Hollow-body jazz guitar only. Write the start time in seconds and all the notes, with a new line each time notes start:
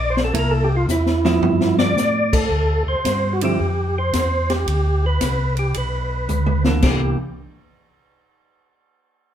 0.34 A#3 E4 A4
1.25 F3 B3 E4
3.42 D3 F3 C4 E4
6.66 E3 A#3 D4
6.84 E3 A#3 D4